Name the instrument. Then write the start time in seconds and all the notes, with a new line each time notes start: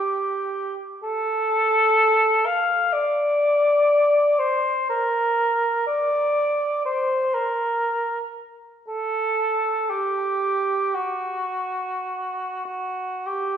cor anglais
Already playing: G4
1.03 A4
2.46 F5
2.93 D5
4.39 C5
4.89 A#4
5.86 D5
6.85 C5
7.34 A#4
8.88 A4
9.90 G4
10.94 F#4
12.65 F#4
13.26 G4